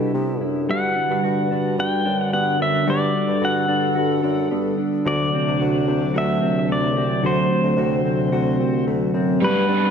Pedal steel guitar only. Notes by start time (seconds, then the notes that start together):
0.71 F#5
1.80 G5
2.20 F#5
2.33 F#5
2.62 E5
2.90 D5
3.45 F#5
5.08 D5
6.18 E5
6.72 D5
7.26 C5
9.44 B4